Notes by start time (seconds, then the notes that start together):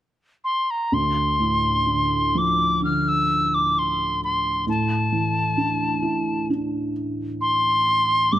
0.44 C6
0.70 A#5
0.92 D2 C6
1.39 A2
1.87 D3
2.35 F3 D6
2.82 D3 F6
3.08 E6
3.54 D6
3.79 C6
4.24 C6
4.67 A2 A5
5.12 E3
5.57 D4
6.02 E4
6.50 D4
7.41 C6
8.32 G2 D6